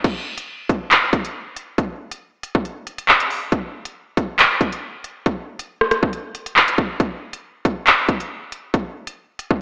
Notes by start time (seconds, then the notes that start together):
0.04 kick, closed hi-hat, crash
0.38 closed hi-hat
0.69 kick, closed hi-hat
0.91 clap, closed hi-hat
1.13 kick, closed hi-hat
1.25 closed hi-hat
1.56 closed hi-hat
1.78 kick, closed hi-hat
2.11 closed hi-hat
2.43 closed hi-hat
2.55 kick
2.65 closed hi-hat
2.87 closed hi-hat
2.98 closed hi-hat
3.09 clap
3.20 closed hi-hat
3.30 open hi-hat
3.52 kick, closed hi-hat
3.85 closed hi-hat
4.17 kick, closed hi-hat
4.39 clap, closed hi-hat
4.61 kick, closed hi-hat
4.72 closed hi-hat
5.04 closed hi-hat
5.26 kick, closed hi-hat
5.59 closed hi-hat
5.81 cross-stick
5.91 cross-stick, closed hi-hat
6.03 kick
6.13 closed hi-hat
6.35 closed hi-hat
6.46 closed hi-hat
6.56 clap
6.68 closed hi-hat
6.78 kick
7.00 kick, closed hi-hat
7.33 closed hi-hat
7.65 kick, closed hi-hat
7.87 clap, closed hi-hat
8.09 kick, closed hi-hat
8.20 closed hi-hat
8.52 closed hi-hat
8.74 kick, closed hi-hat
9.07 closed hi-hat
9.39 closed hi-hat
9.51 kick